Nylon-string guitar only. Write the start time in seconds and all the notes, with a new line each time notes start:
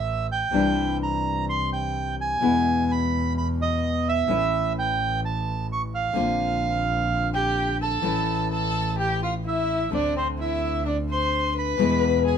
0.51 C3 E3 G3 D4 E4
2.40 B2 E3 G#3 B3 E4
4.27 E3 A3 C#4 E4
6.13 D3 A#3 C4 F4
8.02 E3 A3 C#4 E4
9.91 D3 A3 C4
11.77 B2 E3 G#3 B3 E4